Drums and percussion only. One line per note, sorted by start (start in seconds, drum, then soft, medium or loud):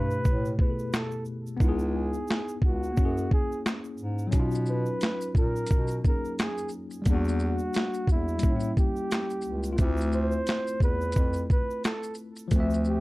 0.11 shaker soft
0.25 kick medium
0.25 shaker medium
0.45 shaker soft
0.59 kick loud
0.79 shaker soft
0.93 snare loud
0.93 clap medium
0.93 shaker medium
1.11 shaker soft
1.25 shaker soft
1.47 shaker medium
1.60 kick loud
1.60 shaker medium
1.79 shaker soft
2.13 shaker medium
2.28 snare loud
2.28 clap loud
2.28 shaker medium
2.48 shaker medium
2.62 kick medium
2.83 shaker soft
2.97 kick loud
2.97 shaker medium
3.18 shaker medium
3.31 kick loud
3.52 shaker soft
3.66 snare loud
3.66 clap medium
3.66 shaker medium
3.84 shaker soft
3.98 shaker soft
4.19 shaker medium
4.32 kick loud
4.32 closed hi-hat medium
4.32 shaker medium
4.51 shaker soft
4.55 shaker medium
4.66 shaker soft
4.86 shaker medium
5.01 snare loud
5.01 clap loud
5.01 closed hi-hat medium
5.01 shaker medium
5.21 shaker soft
5.21 shaker medium
5.35 kick loud
5.35 shaker soft
5.56 shaker soft
5.66 closed hi-hat medium
5.66 shaker medium
5.71 kick loud
5.71 shaker medium
5.88 shaker soft
5.90 shaker soft
6.04 kick medium
6.04 shaker soft
6.25 shaker soft
6.39 snare loud
6.39 clap medium
6.39 closed hi-hat medium
6.39 shaker medium
6.58 shaker soft
6.69 shaker soft
6.71 shaker soft
6.91 shaker soft
6.92 shaker medium
7.05 kick loud
7.05 closed hi-hat medium
7.05 shaker medium
7.25 shaker soft
7.28 shaker medium
7.40 shaker soft
7.59 shaker medium
7.73 snare loud
7.73 clap medium
7.73 closed hi-hat medium
7.73 shaker medium
7.94 shaker medium
7.94 shaker soft
8.07 kick loud
8.07 shaker soft
8.28 shaker soft
8.39 closed hi-hat medium
8.39 shaker medium
8.43 kick loud
8.43 shaker medium
8.60 shaker soft
8.63 shaker soft
8.77 kick loud
8.77 shaker soft
8.96 shaker soft
9.11 snare loud
9.11 clap medium
9.11 closed hi-hat medium
9.11 shaker medium
9.30 shaker soft
9.42 shaker soft
9.44 shaker soft
9.63 shaker soft
9.65 shaker medium
9.78 kick loud
9.78 closed hi-hat medium
9.78 shaker medium
9.97 shaker soft
10.01 shaker medium
10.12 shaker soft
10.31 shaker medium
10.47 snare loud
10.47 clap medium
10.47 closed hi-hat medium
10.47 shaker medium
10.67 shaker soft
10.67 shaker medium
10.80 kick medium
10.80 shaker soft
11.01 shaker soft
11.12 closed hi-hat medium
11.12 shaker medium
11.16 kick loud
11.16 shaker medium
11.33 shaker soft
11.36 shaker soft
11.50 kick loud
11.50 shaker soft
11.71 shaker soft
11.84 snare loud
11.84 clap medium
11.84 closed hi-hat medium
11.84 shaker medium
12.03 shaker soft
12.15 shaker soft
12.17 shaker soft
12.36 shaker soft
12.38 shaker medium
12.51 kick loud
12.51 closed hi-hat medium
12.51 shaker medium
12.70 shaker soft
12.74 shaker soft
12.85 shaker soft